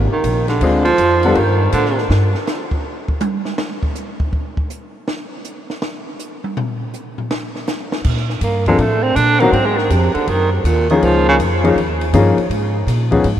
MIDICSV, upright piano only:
0, 0, Header, 1, 2, 480
1, 0, Start_track
1, 0, Key_signature, -2, "major"
1, 0, Tempo, 371517
1, 800, Time_signature, 4, 2, 24, 8
1, 17312, End_track
2, 0, Start_track
2, 0, Title_t, "Upright piano"
2, 0, Program_c, 0, 0
2, 809, Note_on_c, 0, 56, 64
2, 809, Note_on_c, 0, 60, 63
2, 810, Note_on_c, 0, 65, 60
2, 813, Note_on_c, 0, 68, 75
2, 817, Note_on_c, 0, 62, 60
2, 1087, Note_off_c, 0, 60, 0
2, 1088, Note_off_c, 0, 56, 0
2, 1088, Note_off_c, 0, 65, 0
2, 1089, Note_off_c, 0, 68, 0
2, 1091, Note_off_c, 0, 62, 0
2, 1606, Note_on_c, 0, 59, 64
2, 1616, Note_on_c, 0, 55, 70
2, 1618, Note_on_c, 0, 65, 61
2, 1619, Note_on_c, 0, 62, 65
2, 1621, Note_on_c, 0, 69, 74
2, 1749, Note_off_c, 0, 59, 0
2, 1754, Note_off_c, 0, 55, 0
2, 1755, Note_off_c, 0, 65, 0
2, 1756, Note_off_c, 0, 62, 0
2, 1757, Note_off_c, 0, 69, 0
2, 11212, Note_on_c, 0, 60, 67
2, 11213, Note_on_c, 0, 53, 74
2, 11218, Note_on_c, 0, 58, 62
2, 11218, Note_on_c, 0, 62, 68
2, 11224, Note_on_c, 0, 69, 78
2, 11354, Note_off_c, 0, 53, 0
2, 11354, Note_off_c, 0, 60, 0
2, 11357, Note_off_c, 0, 58, 0
2, 11357, Note_off_c, 0, 62, 0
2, 11360, Note_off_c, 0, 69, 0
2, 12162, Note_on_c, 0, 54, 72
2, 12172, Note_on_c, 0, 60, 66
2, 12173, Note_on_c, 0, 63, 70
2, 12175, Note_on_c, 0, 58, 66
2, 12178, Note_on_c, 0, 66, 82
2, 12309, Note_off_c, 0, 54, 0
2, 12314, Note_off_c, 0, 60, 0
2, 12314, Note_off_c, 0, 63, 0
2, 12315, Note_off_c, 0, 58, 0
2, 12317, Note_off_c, 0, 66, 0
2, 14092, Note_on_c, 0, 53, 70
2, 14099, Note_on_c, 0, 58, 62
2, 14099, Note_on_c, 0, 61, 66
2, 14103, Note_on_c, 0, 63, 67
2, 14109, Note_on_c, 0, 68, 80
2, 14697, Note_off_c, 0, 53, 0
2, 14701, Note_off_c, 0, 58, 0
2, 14701, Note_off_c, 0, 61, 0
2, 14702, Note_off_c, 0, 63, 0
2, 14705, Note_off_c, 0, 68, 0
2, 15033, Note_on_c, 0, 58, 67
2, 15037, Note_on_c, 0, 53, 74
2, 15039, Note_on_c, 0, 61, 63
2, 15040, Note_on_c, 0, 63, 65
2, 15042, Note_on_c, 0, 68, 79
2, 15184, Note_off_c, 0, 58, 0
2, 15186, Note_off_c, 0, 53, 0
2, 15187, Note_off_c, 0, 61, 0
2, 15187, Note_off_c, 0, 63, 0
2, 15188, Note_off_c, 0, 68, 0
2, 15680, Note_on_c, 0, 53, 80
2, 15681, Note_on_c, 0, 68, 81
2, 15682, Note_on_c, 0, 61, 74
2, 15685, Note_on_c, 0, 58, 67
2, 15688, Note_on_c, 0, 63, 68
2, 15964, Note_off_c, 0, 53, 0
2, 15964, Note_off_c, 0, 68, 0
2, 15965, Note_off_c, 0, 61, 0
2, 15966, Note_off_c, 0, 58, 0
2, 15968, Note_off_c, 0, 63, 0
2, 16939, Note_on_c, 0, 53, 69
2, 16945, Note_on_c, 0, 59, 62
2, 16948, Note_on_c, 0, 61, 60
2, 16948, Note_on_c, 0, 63, 60
2, 16949, Note_on_c, 0, 68, 81
2, 17095, Note_off_c, 0, 53, 0
2, 17098, Note_off_c, 0, 59, 0
2, 17100, Note_off_c, 0, 61, 0
2, 17100, Note_off_c, 0, 63, 0
2, 17100, Note_off_c, 0, 68, 0
2, 17312, End_track
0, 0, End_of_file